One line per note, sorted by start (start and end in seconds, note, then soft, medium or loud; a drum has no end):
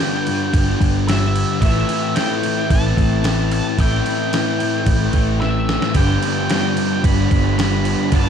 0.00 0.53 G2 medium
0.00 1.60 G2 medium
0.00 1.60 D3 loud
0.00 0.29 D3 medium
0.00 1.63 G3 loud
0.00 0.26 G3 medium
0.00 1.58 F4 medium
0.00 8.29 B4 medium
0.00 1.13 G5 medium
0.00 8.09 G5 medium
0.27 0.82 D3 medium
0.27 0.80 G3 medium
0.27 crash medium
0.53 0.74 G1 medium
0.53 kick loud
0.53 crash medium
0.80 1.43 G1 medium
0.80 1.07 D3 medium
0.80 1.10 G3 medium
0.80 kick medium
0.80 crash medium
1.07 1.60 G2 medium
1.07 1.60 D3 medium
1.07 1.62 G3 medium
1.07 1.60 E5 medium
1.07 snare loud
1.07 crash medium
1.36 crash medium
1.60 1.83 A1 loud
1.60 2.15 A2 loud
1.60 2.17 E3 medium
1.60 2.19 A3 loud
1.60 5.92 C4 medium
1.60 2.17 E5 medium
1.60 kick loud
1.60 crash medium
1.89 snare soft
1.89 crash medium
2.15 3.23 A2 medium
2.15 2.46 E3 medium
2.15 2.42 A3 medium
2.15 2.71 G5 medium
2.15 snare loud
2.15 crash medium
2.42 2.99 E3 medium
2.42 2.96 A3 medium
2.42 crash medium
2.70 2.91 A1 loud
2.70 3.52 A5 loud
2.70 kick loud
2.70 crash medium
2.97 3.60 A1 medium
2.97 3.24 E3 medium
2.97 3.26 A3 medium
2.97 kick medium
2.97 crash medium
3.23 3.77 A2 medium
3.23 3.78 E3 medium
3.23 3.80 A3 medium
3.23 snare loud
3.23 crash medium
3.51 3.80 A5 medium
3.51 crash medium
3.78 3.99 A1 loud
3.78 4.32 A2 medium
3.78 4.33 E3 loud
3.78 4.35 A3 loud
3.78 5.47 G5 loud
3.78 kick loud
3.78 crash medium
4.06 snare soft
4.06 crash medium
4.33 4.87 A2 medium
4.33 4.62 E3 medium
4.33 4.59 A3 medium
4.33 snare loud
4.33 crash medium
4.60 5.16 E3 medium
4.60 5.13 A3 medium
4.60 crash medium
4.86 5.08 A1 medium
4.86 kick loud
4.86 crash medium
5.13 5.77 A1 medium
5.13 5.43 A3 medium
5.13 kick medium
5.13 crash medium
5.18 5.42 E3 medium
5.41 5.94 A2 medium
5.41 5.95 E3 medium
5.41 5.96 A3 medium
5.41 5.97 E5 medium
5.41 snare medium
5.69 snare medium
5.82 snare medium
5.94 6.16 G1 loud
5.94 7.04 G2 loud
5.94 6.49 G2 medium
5.94 6.48 D3 medium
5.94 6.50 D3 medium
5.94 6.50 F3 medium
5.94 6.51 B3 loud
5.94 6.52 D4 loud
5.94 8.29 F4 medium
5.94 6.50 G5 loud
5.94 kick loud
5.94 crash medium
5.99 6.52 G3 loud
6.22 snare soft
6.22 crash medium
6.49 7.56 G2 medium
6.49 7.04 D3 medium
6.49 6.78 D3 medium
6.49 7.05 F3 medium
6.49 6.75 G3 medium
6.49 7.07 B3 medium
6.49 7.06 D4 medium
6.49 7.07 G5 medium
6.49 snare loud
6.49 crash medium
6.75 7.32 D3 medium
6.75 7.30 G3 medium
6.75 crash medium
7.04 7.25 G1 medium
7.04 7.59 G2 medium
7.04 7.57 D3 loud
7.04 7.34 F3 loud
7.04 7.33 B3 loud
7.04 7.31 D4 loud
7.04 7.58 B5 loud
7.04 kick loud
7.04 crash medium
7.30 7.94 G1 medium
7.30 7.57 D3 medium
7.30 7.59 G3 medium
7.30 7.60 B3 medium
7.30 7.60 D4 medium
7.30 kick medium
7.30 crash medium
7.35 7.58 F3 medium
7.57 8.10 G2 medium
7.57 8.11 D3 medium
7.57 8.12 F3 medium
7.57 8.13 G3 medium
7.57 8.13 B3 medium
7.57 8.15 B5 loud
7.57 snare loud
7.57 crash medium
7.61 8.13 D4 medium
7.85 crash medium
8.11 8.29 G1 medium
8.11 8.29 G2 medium
8.11 8.29 D3 loud
8.11 8.29 F3 loud
8.11 8.29 G3 loud
8.11 8.29 B3 medium
8.11 8.29 D4 loud
8.11 8.29 A5 medium
8.11 kick loud
8.11 crash medium
8.15 8.29 A5 loud